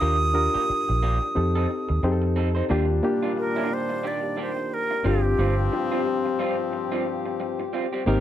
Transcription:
Already playing: flute D#6
0.00 fingered electric bass D#2, clean electric guitar A#3 D4 G4, reed electric piano D4 F4 G4 A#4
0.34 reed electric piano D4 F4 G4 A#4, muted clean electric guitar stroke
0.54 clean electric guitar A#3 D4 G4, muted fingered electric bass stroke
0.69 muted clean electric guitar stroke, muted fingered electric bass stroke
0.89 fingered electric bass A#1, muted clean electric guitar stroke
1.03 clean electric guitar A#3 D4 G4
1.22 muted clean electric guitar stroke
1.35 fingered electric bass F2, reed electric piano C4 D#4 G4 A4, muted clean electric guitar stroke
1.55 clean electric guitar C4 D#4 A4
1.70 muted clean electric guitar stroke
1.89 fingered electric bass D#2, muted clean electric guitar stroke
2.03 fingered electric bass F2, reed electric piano C4 D#4 G4 G#4, muted clean electric guitar stroke
2.12 reed electric piano A4
2.22 muted clean electric guitar stroke
2.36 clean electric guitar C4 D#4 A4
2.55 clean electric guitar C4 D#4 C5
2.69 fingered electric bass D#2, trombone section A#2 G3 D4, french horn section D#3 A#3 D4 F4 G4, clean electric guitar G3 D4 F4, reed electric piano A#3 D4 F4 G4
3.03 reed electric piano A#3 D4 F4 G4, muted clean electric guitar stroke
3.23 clean electric guitar G3 D4 F4
3.36 flute A#4, muted clean electric guitar stroke
3.56 clean electric guitar G3 D4 F4
3.70 flute C5, muted clean electric guitar stroke
3.89 muted clean electric guitar stroke
4.03 clean electric guitar G3 D4 G4, flute D5
4.23 muted clean electric guitar stroke
4.37 clean electric guitar G3 D4 G4
4.42 flute C5
4.57 muted clean electric guitar stroke
4.74 flute A#4
4.91 muted clean electric guitar stroke
5.04 fingered electric bass G1, trombone section G2 F3 C4, clean electric guitar G3 C4 F4, reed electric piano C4 D4 F4 G4, french horn section C4 F4, flute G4
5.25 muted clean electric guitar stroke
5.39 fingered electric bass G1, clean electric guitar G3 C4 F4
5.73 reed electric piano C4 D4 F4 G4, muted clean electric guitar stroke
5.92 clean electric guitar G3 C4 F4
6.06 muted clean electric guitar stroke
6.26 muted clean electric guitar stroke
6.39 clean electric guitar G3 C4 F4
6.59 muted clean electric guitar stroke
6.72 muted clean electric guitar stroke
6.92 clean electric guitar G3 C4 F4
7.06 muted clean electric guitar stroke
7.26 muted clean electric guitar stroke
7.40 muted clean electric guitar stroke
7.60 muted clean electric guitar stroke
7.73 clean electric guitar G3 C4 F4
7.93 clean electric guitar G3 C4 G4
8.06 fingered electric bass G#1, trombone section C3 A#3 D#4, french horn section G#3 D#4 A#4 C5, reed electric piano A#3 C4 D#4 G4, clean electric guitar C4 G4 A#4

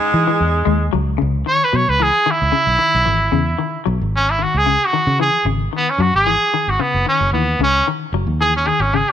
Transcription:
Already playing: baritone saxophone G#2, tenor saxophone G#3, alto saxophone G#4
0.14 fingered electric bass E3
0.27 clean electric guitar E3
0.40 fingered electric bass E2
0.65 fingered electric bass D#2, clean electric guitar G#3
0.93 fingered electric bass C#2, clean electric guitar F#3
1.18 fingered electric bass C#2, clean electric guitar C#3
1.46 clean electric guitar D#3, trumpet C#5
1.64 trumpet B4
1.73 fingered electric bass B2, clean electric guitar F#3, trumpet C#5
1.88 fingered electric bass C#2, trumpet B4
2.00 clean electric guitar E3, trumpet G#4
2.26 clean electric guitar D#3
2.31 trumpet E4
2.42 fingered electric bass C#2
2.52 clean electric guitar C#3
2.67 fingered electric bass B1
2.79 clean electric guitar D#3
2.94 fingered electric bass B1
3.06 fingered electric bass G#1, clean electric guitar E3
3.32 fingered electric bass E2, clean electric guitar C#3
3.59 clean electric guitar D#3
3.86 fingered electric bass B1, clean electric guitar F#3
4.01 fingered electric bass G#1
4.16 trumpet C#4
4.31 trumpet E4
4.39 clean electric guitar D#3, trumpet F#4
4.54 fingered electric bass C#2, trumpet G#4
4.66 clean electric guitar C#3
4.85 trumpet F#4
4.93 clean electric guitar D#3
5.07 fingered electric bass C#3
5.20 clean electric guitar E3, trumpet G#4
5.45 fingered electric bass G#1, clean electric guitar C#3
5.73 clean electric guitar D#3, trumpet B3
5.90 trumpet C#4
5.98 fingered electric bass F#2, clean electric guitar F#3, trumpet F#4
6.14 fingered electric bass G#1, trumpet G#4
6.27 clean electric guitar E3
6.54 clean electric guitar D#3
6.67 fingered electric bass G#1, trumpet F#4
6.80 clean electric guitar C#3, trumpet B3
6.94 fingered electric bass F#1
7.06 clean electric guitar D#3, trumpet C#4
7.21 fingered electric bass F#1
7.33 fingered electric bass D#2, clean electric guitar E3, trumpet B3
7.59 fingered electric bass C#2, clean electric guitar C#3
7.63 trumpet C#4
7.88 clean electric guitar D#3
8.12 fingered electric bass F#1, clean electric guitar F#3
8.27 fingered electric bass D#2
8.41 clean electric guitar E3, trumpet G#4
8.56 trumpet C#4
8.67 clean electric guitar D#3, trumpet G#4
8.80 fingered electric bass G#1, trumpet C#4
8.94 clean electric guitar C#3, trumpet G#4

